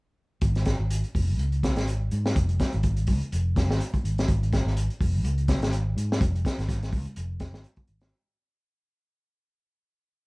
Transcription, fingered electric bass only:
0, 0, Header, 1, 3, 480
1, 0, Start_track
1, 0, Tempo, 480769
1, 427, Time_signature, 4, 2, 24, 8
1, 10251, End_track
2, 0, Start_track
2, 0, Title_t, "Fingered electric bass"
2, 0, Program_c, 0, 33
2, 419, Note_on_c, 0, 32, 86
2, 765, Note_off_c, 0, 32, 0
2, 787, Note_on_c, 0, 32, 68
2, 1014, Note_off_c, 0, 32, 0
2, 1149, Note_on_c, 0, 29, 79
2, 1378, Note_off_c, 0, 29, 0
2, 1378, Note_on_c, 0, 37, 68
2, 1757, Note_off_c, 0, 37, 0
2, 1757, Note_on_c, 0, 32, 77
2, 2078, Note_off_c, 0, 32, 0
2, 2117, Note_on_c, 0, 44, 67
2, 2335, Note_off_c, 0, 44, 0
2, 2360, Note_on_c, 0, 29, 89
2, 2577, Note_off_c, 0, 29, 0
2, 2737, Note_on_c, 0, 32, 80
2, 3074, Note_on_c, 0, 37, 86
2, 3089, Note_off_c, 0, 32, 0
2, 3197, Note_off_c, 0, 37, 0
2, 3322, Note_on_c, 0, 29, 98
2, 3682, Note_off_c, 0, 29, 0
2, 3682, Note_on_c, 0, 32, 75
2, 3782, Note_off_c, 0, 32, 0
2, 4034, Note_on_c, 0, 32, 64
2, 4254, Note_off_c, 0, 32, 0
2, 4279, Note_on_c, 0, 32, 97
2, 4618, Note_off_c, 0, 32, 0
2, 4641, Note_on_c, 0, 32, 80
2, 4863, Note_off_c, 0, 32, 0
2, 4998, Note_on_c, 0, 29, 83
2, 5232, Note_off_c, 0, 29, 0
2, 5232, Note_on_c, 0, 37, 79
2, 5606, Note_off_c, 0, 37, 0
2, 5606, Note_on_c, 0, 32, 70
2, 5921, Note_off_c, 0, 32, 0
2, 5957, Note_on_c, 0, 44, 67
2, 6173, Note_off_c, 0, 44, 0
2, 6198, Note_on_c, 0, 29, 91
2, 6413, Note_off_c, 0, 29, 0
2, 6566, Note_on_c, 0, 32, 73
2, 6916, Note_on_c, 0, 37, 96
2, 6931, Note_off_c, 0, 32, 0
2, 7035, Note_off_c, 0, 37, 0
2, 7159, Note_on_c, 0, 29, 100
2, 7529, Note_off_c, 0, 29, 0
2, 7529, Note_on_c, 0, 32, 78
2, 7622, Note_off_c, 0, 32, 0
2, 7873, Note_on_c, 0, 32, 74
2, 8089, Note_off_c, 0, 32, 0
2, 10251, End_track
3, 0, Start_track
3, 0, Title_t, "Muted fingered electric bass strokes"
3, 3931, Note_on_c, 9, 29, 33
3, 4031, Note_off_c, 9, 29, 0
3, 7759, Note_on_c, 9, 29, 37
3, 7859, Note_off_c, 9, 29, 0
3, 10251, End_track
0, 0, End_of_file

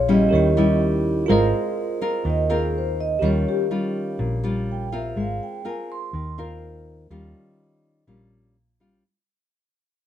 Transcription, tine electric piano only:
0, 0, Header, 1, 2, 480
1, 0, Start_track
1, 0, Key_signature, -4, "major"
1, 0, Tempo, 484653
1, 1271, Time_signature, 4, 2, 24, 8
1, 9963, End_track
2, 0, Start_track
2, 0, Title_t, "Tine electric piano"
2, 0, Program_c, 0, 4
2, 0, Control_c, 0, 64, 127
2, 0, Note_on_c, 0, 68, 49
2, 0, Note_on_c, 0, 73, 46
2, 0, Note_on_c, 0, 77, 58
2, 0, Note_on_c, 0, 84, 50
2, 282, Note_off_c, 0, 68, 0
2, 287, Note_on_c, 0, 67, 50
2, 293, Note_off_c, 0, 84, 0
2, 304, Note_off_c, 0, 73, 0
2, 305, Note_on_c, 0, 70, 45
2, 313, Note_off_c, 0, 77, 0
2, 326, Control_c, 0, 64, 0
2, 326, Note_on_c, 0, 73, 45
2, 348, Note_on_c, 0, 64, 59
2, 485, Control_c, 0, 64, 127
2, 1239, Note_off_c, 0, 67, 0
2, 1248, Note_off_c, 0, 70, 0
2, 1249, Note_on_c, 0, 65, 55
2, 1259, Note_off_c, 0, 73, 0
2, 1269, Note_on_c, 0, 70, 52
2, 1270, Note_off_c, 0, 64, 0
2, 1282, Control_c, 0, 64, 0
2, 1289, Note_on_c, 0, 72, 53
2, 1306, Note_on_c, 0, 75, 70
2, 1470, Control_c, 0, 64, 127
2, 3140, Note_off_c, 0, 65, 0
2, 3150, Note_off_c, 0, 70, 0
2, 3160, Note_off_c, 0, 72, 0
2, 3162, Note_on_c, 0, 67, 47
2, 3169, Note_off_c, 0, 75, 0
2, 3180, Note_on_c, 0, 70, 43
2, 3198, Note_on_c, 0, 73, 48
2, 3201, Control_c, 0, 64, 0
2, 3221, Note_on_c, 0, 77, 53
2, 3370, Control_c, 0, 64, 127
2, 5057, Note_off_c, 0, 67, 0
2, 5066, Note_off_c, 0, 70, 0
2, 5075, Note_off_c, 0, 73, 0
2, 5087, Note_off_c, 0, 77, 0
2, 5121, Control_c, 0, 64, 0
2, 9963, End_track
0, 0, End_of_file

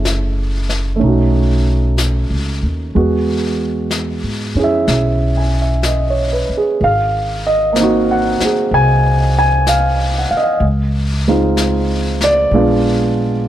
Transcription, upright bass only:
0, 0, Header, 1, 3, 480
1, 0, Start_track
1, 0, Tempo, 964630
1, 1468, Time_signature, 4, 2, 24, 8
1, 3864, Tempo, 953895
1, 6740, End_track
2, 0, Start_track
2, 0, Title_t, "Upright bass"
2, 0, Program_c, 0, 32
2, 0, Note_on_c, 0, 30, 70
2, 483, Note_off_c, 0, 30, 0
2, 503, Note_on_c, 0, 35, 64
2, 1127, Note_off_c, 0, 35, 0
2, 1145, Note_on_c, 0, 37, 45
2, 1296, Note_off_c, 0, 37, 0
2, 1307, Note_on_c, 0, 39, 52
2, 1457, Note_off_c, 0, 39, 0
2, 1472, Note_on_c, 0, 40, 65
2, 2090, Note_off_c, 0, 40, 0
2, 2107, Note_on_c, 0, 44, 43
2, 2256, Note_off_c, 0, 44, 0
2, 2263, Note_on_c, 0, 41, 51
2, 2413, Note_off_c, 0, 41, 0
2, 2426, Note_on_c, 0, 35, 63
2, 3211, Note_off_c, 0, 35, 0
2, 3387, Note_on_c, 0, 32, 70
2, 4171, Note_off_c, 0, 32, 0
2, 4341, Note_on_c, 0, 36, 63
2, 5127, Note_off_c, 0, 36, 0
2, 5291, Note_on_c, 0, 37, 70
2, 6235, Note_off_c, 0, 37, 0
2, 6253, Note_on_c, 0, 34, 66
2, 6740, Note_off_c, 0, 34, 0
2, 6740, End_track
3, 0, Start_track
3, 0, Title_t, "Muted upright bass strokes"
3, 3230, Note_on_c, 9, 29, 31
3, 3280, Note_off_c, 9, 29, 0
3, 4188, Note_on_c, 9, 29, 31
3, 4239, Note_off_c, 9, 29, 0
3, 5143, Note_on_c, 9, 29, 31
3, 5194, Note_off_c, 9, 29, 0
3, 6740, End_track
0, 0, End_of_file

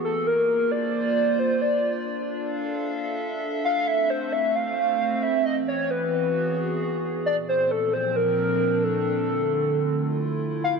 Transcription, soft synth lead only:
0, 0, Header, 1, 2, 480
1, 0, Start_track
1, 0, Tempo, 500000
1, 10367, End_track
2, 0, Start_track
2, 0, Title_t, "Soft synth lead"
2, 0, Program_c, 0, 80
2, 43, Note_on_c, 0, 69, 95
2, 255, Note_on_c, 0, 70, 104
2, 270, Note_off_c, 0, 69, 0
2, 685, Note_on_c, 0, 74, 120
2, 700, Note_off_c, 0, 70, 0
2, 1335, Note_on_c, 0, 72, 102
2, 1350, Note_off_c, 0, 74, 0
2, 1551, Note_on_c, 0, 74, 99
2, 1565, Note_off_c, 0, 72, 0
2, 1984, Note_off_c, 0, 74, 0
2, 3502, Note_on_c, 0, 77, 113
2, 3719, Note_on_c, 0, 76, 112
2, 3733, Note_off_c, 0, 77, 0
2, 3936, Note_on_c, 0, 72, 100
2, 3950, Note_off_c, 0, 76, 0
2, 4151, Note_on_c, 0, 76, 104
2, 4165, Note_off_c, 0, 72, 0
2, 4371, Note_on_c, 0, 77, 113
2, 4385, Note_off_c, 0, 76, 0
2, 5018, Note_on_c, 0, 76, 105
2, 5032, Note_off_c, 0, 77, 0
2, 5231, Note_off_c, 0, 76, 0
2, 5237, Note_on_c, 0, 75, 100
2, 5333, Note_off_c, 0, 75, 0
2, 5453, Note_on_c, 0, 73, 94
2, 5669, Note_on_c, 0, 71, 87
2, 5683, Note_off_c, 0, 73, 0
2, 6534, Note_off_c, 0, 71, 0
2, 6970, Note_on_c, 0, 74, 118
2, 7066, Note_off_c, 0, 74, 0
2, 7188, Note_on_c, 0, 72, 107
2, 7403, Note_on_c, 0, 69, 100
2, 7417, Note_off_c, 0, 72, 0
2, 7616, Note_on_c, 0, 72, 102
2, 7630, Note_off_c, 0, 69, 0
2, 7834, Note_on_c, 0, 70, 102
2, 7848, Note_off_c, 0, 72, 0
2, 8482, Note_on_c, 0, 69, 100
2, 8496, Note_off_c, 0, 70, 0
2, 10209, Note_off_c, 0, 69, 0
2, 10215, Note_on_c, 0, 77, 105
2, 10312, Note_off_c, 0, 77, 0
2, 10367, End_track
0, 0, End_of_file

